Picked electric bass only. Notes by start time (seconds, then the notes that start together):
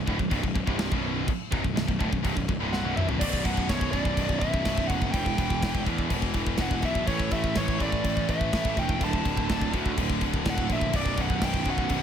0.07 D1
0.20 B0
0.31 C1
0.43 B0
0.55 B0
0.67 C1
0.92 B0
1.52 B0
1.64 B0
1.76 B0
1.88 B0
2.00 D1
2.12 B0
2.25 C1
2.37 B0
2.49 B0
2.60 C1
2.83 B0
3.21 B0
3.45 B0
3.69 B0
4.17 B0
4.42 B0
4.65 B0
4.89 F#1
5.14 E1
5.38 E1
5.62 E1
5.87 E2
6.11 E1
6.59 E1
6.83 B1
7.07 A1
7.31 A1
7.56 A1
8.04 A1
8.29 A1
8.53 A1
8.77 E1
9.01 D1
9.25 D1
9.50 D1
9.73 D2
9.97 D1
10.46 D1
10.70 A#1
10.93 B0
11.18 B0
11.41 B0
11.90 B0